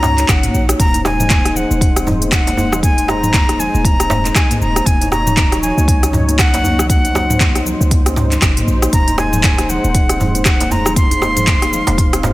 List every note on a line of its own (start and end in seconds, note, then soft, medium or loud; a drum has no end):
0.00 0.24 C#2 medium
0.00 0.76 C#4 medium
0.00 0.76 F#4 medium
0.00 0.78 C#5 medium
0.00 0.31 A#5 loud
0.00 mid tom medium
0.00 djembe slap loud
0.00 high conga medium
0.00 shaker medium
0.18 0.28 D#4 medium
0.18 clap soft
0.18 closed hi-hat soft
0.18 shaker medium
0.29 0.49 F#1 medium
0.29 0.69 F#5 medium
0.29 kick loud
0.29 cross-stick medium
0.29 clap loud
0.29 closed hi-hat medium
0.29 shaker loud
0.43 0.54 A#3 medium
0.43 closed hi-hat soft
0.43 mid tom medium
0.43 high conga medium
0.43 shaker medium
0.54 0.74 A#1 medium
0.54 shaker medium
0.69 0.75 D#4 medium
0.69 cross-stick loud
0.69 closed hi-hat soft
0.69 shaker loud
0.79 1.65 D#1 loud
0.79 4.83 G#3 medium
0.79 8.89 D#4 medium
0.79 4.83 C5 medium
0.79 1.03 A#5 loud
0.79 kick loud
0.79 closed hi-hat medium
0.79 high conga loud
0.79 shaker medium
0.94 1.00 D#4 medium
0.94 closed hi-hat soft
0.94 djembe tone medium
0.94 shaker medium
1.05 1.58 G#5 loud
1.05 cross-stick medium
1.05 djembe slap medium
1.05 shaker medium
1.20 1.30 D#4 medium
1.20 mid tom medium
1.20 low conga loud
1.20 shaker medium
1.30 kick loud
1.30 clap loud
1.30 closed hi-hat medium
1.30 djembe tone medium
1.30 high conga loud
1.30 shaker medium
1.45 1.55 D#4 loud
1.45 cross-stick medium
1.45 closed hi-hat soft
1.45 shaker medium
1.56 2.07 F#5 medium
1.56 low conga medium
1.56 shaker medium
1.71 3.68 D#1 medium
1.71 1.76 D#4 medium
1.71 high conga medium
1.71 shaker medium
1.81 kick loud
1.81 closed hi-hat medium
1.81 shaker medium
1.96 2.02 C4 medium
1.96 cross-stick medium
1.96 closed hi-hat soft
1.96 shaker loud
2.07 mid tom medium
2.07 djembe tone loud
2.07 low conga medium
2.07 shaker medium
2.22 2.32 D#4 medium
2.22 closed hi-hat soft
2.22 high conga medium
2.22 shaker medium
2.32 2.80 F#5 medium
2.32 kick loud
2.32 cross-stick medium
2.32 clap loud
2.32 closed hi-hat medium
2.32 shaker loud
2.47 2.57 A#3 medium
2.47 closed hi-hat soft
2.47 djembe slap medium
2.47 shaker medium
2.57 djembe tone loud
2.57 high conga medium
2.57 shaker medium
2.72 2.78 D#4 medium
2.72 cross-stick loud
2.72 low conga loud
2.72 shaker loud
2.83 3.10 G#5 loud
2.83 kick loud
2.83 closed hi-hat medium
2.83 high conga medium
2.83 shaker loud
2.98 3.04 D#4 medium
2.98 closed hi-hat soft
2.98 shaker medium
3.08 3.61 A#5 loud
3.08 cross-stick medium
3.08 djembe slap medium
3.08 shaker medium
3.23 3.33 D#4 medium
3.23 mid tom medium
3.23 low conga loud
3.23 shaker medium
3.34 kick loud
3.34 clap loud
3.34 closed hi-hat medium
3.34 djembe tone medium
3.34 high conga loud
3.34 shaker medium
3.49 3.58 D#4 loud
3.49 cross-stick medium
3.49 closed hi-hat soft
3.49 shaker medium
3.59 3.86 G#5 loud
3.59 low conga medium
3.59 shaker loud
3.74 4.31 D#1 loud
3.74 3.80 D#4 medium
3.74 high conga medium
3.74 shaker medium
3.85 4.37 A#5 loud
3.85 kick loud
3.85 closed hi-hat medium
3.85 high conga loud
3.85 djembe tone medium
3.85 shaker medium
4.00 4.05 C4 medium
4.00 cross-stick medium
4.00 closed hi-hat soft
4.00 shaker loud
4.10 mid tom medium
4.10 djembe slap loud
4.10 high conga medium
4.10 shaker medium
4.25 4.35 D#4 medium
4.25 clap soft
4.25 closed hi-hat soft
4.25 shaker medium
4.35 4.60 G#5 loud
4.35 kick loud
4.35 cross-stick medium
4.35 clap loud
4.35 closed hi-hat medium
4.35 shaker loud
4.50 4.61 A#3 medium
4.50 closed hi-hat soft
4.50 mid tom medium
4.50 high conga medium
4.50 shaker medium
4.61 4.81 D#1 medium
4.61 4.87 A#5 loud
4.61 shaker medium
4.76 4.82 D#4 medium
4.76 cross-stick medium
4.76 closed hi-hat soft
4.76 shaker loud
4.86 5.71 D#1 medium
4.86 8.89 F#3 medium
4.86 6.88 C#5 medium
4.86 5.11 G#5 loud
4.86 kick loud
4.86 closed hi-hat medium
4.86 high conga medium
4.86 shaker medium
5.01 5.07 D#4 medium
5.01 closed hi-hat soft
5.01 djembe tone medium
5.01 shaker medium
5.12 5.59 A#5 loud
5.12 cross-stick medium
5.12 djembe slap medium
5.12 shaker medium
5.27 5.37 D#4 medium
5.27 mid tom medium
5.27 low conga loud
5.27 shaker medium
5.37 kick loud
5.37 clap loud
5.37 closed hi-hat medium
5.37 high conga medium
5.37 djembe tone medium
5.37 shaker medium
5.52 5.62 D#4 loud
5.52 cross-stick medium
5.52 closed hi-hat soft
5.52 shaker soft
5.62 6.10 G#5 medium
5.62 low conga medium
5.62 shaker medium
5.77 7.75 C#2 medium
5.77 5.83 D#4 medium
5.77 high conga medium
5.77 shaker soft
5.88 kick loud
5.88 closed hi-hat medium
5.88 shaker medium
6.03 6.09 C#4 medium
6.03 cross-stick medium
6.03 closed hi-hat soft
6.03 shaker medium
6.13 mid tom medium
6.13 djembe tone loud
6.13 low conga medium
6.13 shaker medium
6.28 6.38 D#4 medium
6.28 closed hi-hat soft
6.28 high conga medium
6.28 shaker medium
6.39 6.86 F#5 loud
6.39 kick loud
6.39 cross-stick medium
6.39 clap loud
6.39 closed hi-hat medium
6.39 shaker medium
6.54 6.64 A#3 medium
6.54 closed hi-hat soft
6.54 djembe slap medium
6.54 shaker medium
6.64 high conga medium
6.64 djembe tone medium
6.64 shaker medium
6.78 6.85 D#4 medium
6.78 cross-stick loud
6.78 low conga medium
6.78 shaker loud
6.89 12.33 C5 medium
6.89 7.62 F#5 loud
6.89 kick loud
6.89 closed hi-hat medium
6.89 high conga medium
6.89 shaker medium
7.05 7.10 D#4 medium
7.05 closed hi-hat soft
7.05 shaker soft
7.15 cross-stick medium
7.15 djembe slap medium
7.15 shaker medium
7.30 7.40 D#4 medium
7.30 mid tom medium
7.30 low conga loud
7.30 shaker medium
7.40 kick loud
7.40 clap loud
7.40 closed hi-hat medium
7.40 djembe tone medium
7.40 high conga medium
7.40 shaker soft
7.55 7.65 D#4 loud
7.55 cross-stick medium
7.55 closed hi-hat soft
7.55 shaker medium
7.65 low conga medium
7.65 shaker medium
7.81 8.38 C#2 medium
7.81 7.87 D#4 medium
7.81 high conga medium
7.81 shaker medium
7.91 kick loud
7.91 closed hi-hat medium
7.91 high conga medium
7.91 djembe tone medium
7.91 shaker soft
8.06 8.12 C#4 medium
8.06 cross-stick medium
8.06 closed hi-hat soft
8.06 shaker medium
8.16 mid tom medium
8.16 djembe slap medium
8.16 high conga medium
8.16 shaker soft
8.32 8.42 D#4 medium
8.32 clap soft
8.32 closed hi-hat soft
8.32 shaker soft
8.42 8.62 F#1 medium
8.42 kick loud
8.42 cross-stick medium
8.42 clap loud
8.42 closed hi-hat medium
8.42 shaker medium
8.57 8.67 A#3 medium
8.57 closed hi-hat soft
8.57 mid tom medium
8.57 high conga medium
8.57 shaker medium
8.67 8.87 A#1 medium
8.67 shaker soft
8.82 8.88 D#4 medium
8.82 cross-stick medium
8.82 closed hi-hat soft
8.82 shaker medium
8.93 9.78 D#1 loud
8.93 12.33 G#3 medium
8.93 10.95 D#4 medium
8.93 9.17 A#5 loud
8.93 kick loud
8.93 closed hi-hat medium
8.93 high conga medium
8.93 shaker medium
9.07 9.14 D#4 medium
9.07 closed hi-hat soft
9.07 djembe tone medium
9.07 shaker soft
9.18 9.71 G#5 loud
9.18 cross-stick medium
9.18 djembe slap medium
9.18 shaker medium
9.33 9.43 D#4 medium
9.33 mid tom medium
9.33 low conga loud
9.33 shaker medium
9.44 kick loud
9.44 clap loud
9.44 closed hi-hat medium
9.44 djembe tone medium
9.44 high conga medium
9.44 shaker soft
9.58 9.68 D#4 loud
9.58 cross-stick medium
9.58 closed hi-hat soft
9.58 shaker medium
9.69 10.45 F#5 loud
9.69 low conga medium
9.69 shaker medium
9.84 11.81 D#1 medium
9.84 9.90 D#4 medium
9.84 high conga medium
9.84 shaker soft
9.95 kick loud
9.95 closed hi-hat medium
9.95 shaker soft
10.09 10.15 C4 medium
10.09 cross-stick medium
10.09 closed hi-hat soft
10.09 shaker medium
10.20 mid tom medium
10.20 djembe tone medium
10.20 low conga medium
10.20 shaker soft
10.35 10.45 D#4 medium
10.35 closed hi-hat soft
10.35 high conga medium
10.35 shaker soft
10.45 10.73 F#5 loud
10.45 kick loud
10.45 cross-stick medium
10.45 clap loud
10.45 closed hi-hat medium
10.45 shaker medium
10.60 10.71 A#3 medium
10.60 closed hi-hat soft
10.60 djembe slap medium
10.60 shaker medium
10.71 10.96 A#5 loud
10.71 high conga medium
10.71 djembe tone medium
10.71 shaker medium
10.85 10.92 D#4 medium
10.85 cross-stick loud
10.85 low conga medium
10.85 shaker loud
10.96 12.33 F5 medium
10.96 12.33 C6 loud
10.96 kick loud
10.96 closed hi-hat medium
10.96 high conga medium
10.96 shaker medium
11.11 11.17 D#4 medium
11.11 closed hi-hat soft
11.11 djembe tone medium
11.11 shaker soft
11.22 cross-stick medium
11.22 djembe slap medium
11.22 shaker soft
11.36 11.47 D#4 medium
11.36 closed hi-hat soft
11.36 mid tom medium
11.36 low conga loud
11.36 shaker medium
11.47 kick loud
11.47 clap loud
11.47 closed hi-hat medium
11.47 djembe tone medium
11.47 high conga loud
11.47 shaker medium
11.62 11.72 D#4 loud
11.62 cross-stick medium
11.62 closed hi-hat soft
11.62 shaker soft
11.72 low conga medium
11.72 shaker medium
11.87 12.33 D#1 medium
11.87 11.93 D#4 medium
11.87 closed hi-hat soft
11.87 djembe slap medium
11.87 high conga medium
11.87 shaker medium
11.97 kick loud
11.97 closed hi-hat medium
11.97 djembe tone medium
11.97 high conga medium
11.97 shaker soft
12.13 12.19 C4 medium
12.13 cross-stick loud
12.13 closed hi-hat soft
12.13 shaker medium
12.23 12.33 F#4 medium
12.23 mid tom medium
12.23 djembe slap loud
12.23 high conga medium
12.23 shaker medium